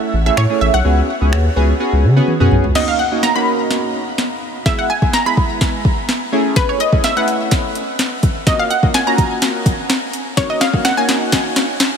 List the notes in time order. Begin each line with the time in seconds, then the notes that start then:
Already playing: A3 C#4 E4 A4 E5
0.13 A1
0.26 A3 C#4 E4 G#4 E5
0.37 A2 C#5, finger snap
0.50 A3 C#4 E4 G#4
0.61 A1 E5
0.74 B1 F#5
0.85 C#2 B3 C#4 F#4 G#4
1.21 C#2 B3 C#4 F#4 G#4
1.32 D#2, finger snap
1.56 C#2 B3 C#4 F#4 G#4
1.80 B3 C#4 F#4 G#4
1.93 C#2
2.04 C#3
2.16 B3 C#4 F#4 G#4
2.28 high tom
2.40 F#2 B3 C#4 F#4 G#4, mid tom
2.51 B1, mid tom
2.64 C#2, floor tom
2.75 A#3 C#4 D#4 F#4 D#5, snare, crash
2.88 F5
2.99 F#5
3.11 A#3 C#4 D#4 F#4
3.23 A#5, snare
3.35 A#3 C#4 D#4 F#4 B5
3.71 snare
4.18 snare
4.65 G#3 B3 E4 G#4 E5, kick, snare
4.79 F#5
4.90 G#5
5.02 G#3 B3 E4 G#4, kick
5.13 A#5, snare
5.26 G#3 B3 E4 G#4 B5
5.37 kick
5.61 kick, snare
5.85 kick
6.09 snare
6.32 A3 C#4 E4 G#4
6.56 B4, kick, snare, closed hi-hat
6.69 C#5
6.80 D#5, closed hi-hat
6.92 A3 C#4 E4 G#4, kick
7.04 E5, snare, closed hi-hat
7.16 A3 C#4 E4 B4 F#5
7.28 closed hi-hat
7.51 kick, snare, closed hi-hat
7.75 closed hi-hat
7.99 snare, closed hi-hat
8.23 kick, closed hi-hat
8.46 A#3 C#4 F4 F#4 D#5, kick, snare, closed hi-hat
8.59 F5
8.70 F#5, closed hi-hat
8.83 A#3 C#4 F4 F#4, kick
8.94 G#5, snare, closed hi-hat
9.07 A#3 C#4 F4 F#4 A#5
9.18 kick, closed hi-hat
9.42 snare, closed hi-hat
9.66 kick, closed hi-hat
9.90 snare, closed hi-hat
10.13 closed hi-hat
10.37 A#3 C#4 D#4 F#4 C#5, kick, snare, closed hi-hat
10.50 D#5
10.61 F5, snare, closed hi-hat
10.73 A#3 C#4 D#4 F#4, kick
10.85 F#5, snare, closed hi-hat
10.97 A#3 C#4 D#4 F#4 G#5
11.09 snare, closed hi-hat
11.32 kick, snare, closed hi-hat
11.56 snare, closed hi-hat
11.80 snare, closed hi-hat